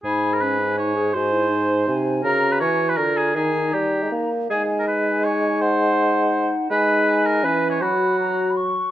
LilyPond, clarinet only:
\new Staff \with { instrumentName = "Clarinet" } { \time 3/4 \key dis \phrygian \tempo 4 = 162 dis'4 cis'8 dis'8 dis'8 gis'8 | fis'8 e'8 dis'2 | fis'2 eis'4 | dis'2~ dis'8 r8 |
dis'2.~ | dis'2. | \key fis \mixolydian dis'2 cis'4 | fis'2~ fis'8 r8 | }